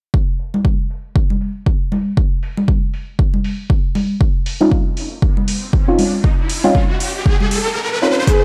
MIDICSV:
0, 0, Header, 1, 5, 480
1, 0, Start_track
1, 0, Tempo, 508475
1, 131, Time_signature, 4, 2, 24, 8
1, 7973, End_track
2, 0, Start_track
2, 0, Title_t, "Soft synth lead"
2, 0, Program_c, 0, 80
2, 7811, Note_on_c, 0, 68, 99
2, 7973, Note_off_c, 0, 68, 0
2, 7973, End_track
3, 0, Start_track
3, 0, Title_t, "Synth stab"
3, 0, Program_c, 1, 62
3, 4347, Note_on_c, 1, 60, 89
3, 4349, Note_on_c, 1, 61, 83
3, 4351, Note_on_c, 1, 63, 81
3, 4353, Note_on_c, 1, 65, 93
3, 4471, Note_off_c, 1, 60, 0
3, 4472, Note_off_c, 1, 61, 0
3, 4473, Note_off_c, 1, 63, 0
3, 4474, Note_off_c, 1, 65, 0
3, 5547, Note_on_c, 1, 60, 81
3, 5549, Note_on_c, 1, 61, 71
3, 5551, Note_on_c, 1, 63, 73
3, 5553, Note_on_c, 1, 65, 88
3, 5671, Note_off_c, 1, 60, 0
3, 5672, Note_off_c, 1, 61, 0
3, 5673, Note_off_c, 1, 63, 0
3, 5674, Note_off_c, 1, 65, 0
3, 6267, Note_on_c, 1, 60, 90
3, 6269, Note_on_c, 1, 61, 80
3, 6271, Note_on_c, 1, 63, 84
3, 6273, Note_on_c, 1, 65, 97
3, 6391, Note_off_c, 1, 60, 0
3, 6392, Note_off_c, 1, 61, 0
3, 6393, Note_off_c, 1, 63, 0
3, 6394, Note_off_c, 1, 65, 0
3, 7568, Note_on_c, 1, 60, 71
3, 7570, Note_on_c, 1, 61, 63
3, 7572, Note_on_c, 1, 63, 65
3, 7574, Note_on_c, 1, 65, 75
3, 7724, Note_off_c, 1, 60, 0
3, 7725, Note_off_c, 1, 61, 0
3, 7726, Note_off_c, 1, 63, 0
3, 7727, Note_off_c, 1, 65, 0
3, 7973, End_track
4, 0, Start_track
4, 0, Title_t, "Riser"
4, 0, Program_c, 2, 103
4, 3971, Note_on_c, 2, 60, 70
4, 7811, Note_off_c, 2, 60, 0
4, 7973, End_track
5, 0, Start_track
5, 0, Title_t, "Drums"
5, 131, Note_on_c, 9, 36, 108
5, 225, Note_off_c, 9, 36, 0
5, 371, Note_on_c, 9, 46, 94
5, 466, Note_off_c, 9, 46, 0
5, 510, Note_on_c, 9, 63, 83
5, 605, Note_off_c, 9, 63, 0
5, 611, Note_on_c, 9, 36, 93
5, 705, Note_off_c, 9, 36, 0
5, 851, Note_on_c, 9, 46, 83
5, 945, Note_off_c, 9, 46, 0
5, 1091, Note_on_c, 9, 36, 110
5, 1185, Note_off_c, 9, 36, 0
5, 1230, Note_on_c, 9, 63, 55
5, 1325, Note_off_c, 9, 63, 0
5, 1331, Note_on_c, 9, 46, 97
5, 1425, Note_off_c, 9, 46, 0
5, 1571, Note_on_c, 9, 36, 92
5, 1665, Note_off_c, 9, 36, 0
5, 1811, Note_on_c, 9, 46, 84
5, 1811, Note_on_c, 9, 63, 85
5, 1906, Note_off_c, 9, 46, 0
5, 1906, Note_off_c, 9, 63, 0
5, 2051, Note_on_c, 9, 36, 110
5, 2145, Note_off_c, 9, 36, 0
5, 2291, Note_on_c, 9, 46, 100
5, 2385, Note_off_c, 9, 46, 0
5, 2430, Note_on_c, 9, 63, 86
5, 2524, Note_off_c, 9, 63, 0
5, 2531, Note_on_c, 9, 36, 101
5, 2625, Note_off_c, 9, 36, 0
5, 2771, Note_on_c, 9, 46, 86
5, 2866, Note_off_c, 9, 46, 0
5, 3011, Note_on_c, 9, 36, 108
5, 3105, Note_off_c, 9, 36, 0
5, 3150, Note_on_c, 9, 63, 61
5, 3245, Note_off_c, 9, 63, 0
5, 3251, Note_on_c, 9, 46, 96
5, 3345, Note_off_c, 9, 46, 0
5, 3491, Note_on_c, 9, 36, 102
5, 3585, Note_off_c, 9, 36, 0
5, 3731, Note_on_c, 9, 46, 85
5, 3731, Note_on_c, 9, 63, 84
5, 3826, Note_off_c, 9, 46, 0
5, 3826, Note_off_c, 9, 63, 0
5, 3971, Note_on_c, 9, 36, 117
5, 4065, Note_off_c, 9, 36, 0
5, 4211, Note_on_c, 9, 46, 104
5, 4306, Note_off_c, 9, 46, 0
5, 4350, Note_on_c, 9, 63, 86
5, 4445, Note_off_c, 9, 63, 0
5, 4451, Note_on_c, 9, 36, 104
5, 4545, Note_off_c, 9, 36, 0
5, 4691, Note_on_c, 9, 46, 86
5, 4786, Note_off_c, 9, 46, 0
5, 4931, Note_on_c, 9, 36, 118
5, 5025, Note_off_c, 9, 36, 0
5, 5070, Note_on_c, 9, 63, 64
5, 5165, Note_off_c, 9, 63, 0
5, 5171, Note_on_c, 9, 46, 103
5, 5266, Note_off_c, 9, 46, 0
5, 5411, Note_on_c, 9, 36, 105
5, 5505, Note_off_c, 9, 36, 0
5, 5651, Note_on_c, 9, 46, 90
5, 5651, Note_on_c, 9, 63, 91
5, 5745, Note_off_c, 9, 63, 0
5, 5746, Note_off_c, 9, 46, 0
5, 5891, Note_on_c, 9, 36, 111
5, 5985, Note_off_c, 9, 36, 0
5, 6131, Note_on_c, 9, 46, 101
5, 6226, Note_off_c, 9, 46, 0
5, 6270, Note_on_c, 9, 63, 85
5, 6365, Note_off_c, 9, 63, 0
5, 6371, Note_on_c, 9, 36, 108
5, 6465, Note_off_c, 9, 36, 0
5, 6611, Note_on_c, 9, 46, 88
5, 6706, Note_off_c, 9, 46, 0
5, 6851, Note_on_c, 9, 36, 115
5, 6945, Note_off_c, 9, 36, 0
5, 6990, Note_on_c, 9, 63, 63
5, 7085, Note_off_c, 9, 63, 0
5, 7091, Note_on_c, 9, 46, 105
5, 7186, Note_off_c, 9, 46, 0
5, 7811, Note_on_c, 9, 36, 117
5, 7811, Note_on_c, 9, 42, 78
5, 7813, Note_on_c, 9, 82, 38
5, 7905, Note_off_c, 9, 36, 0
5, 7906, Note_off_c, 9, 42, 0
5, 7907, Note_off_c, 9, 82, 0
5, 7973, End_track
0, 0, End_of_file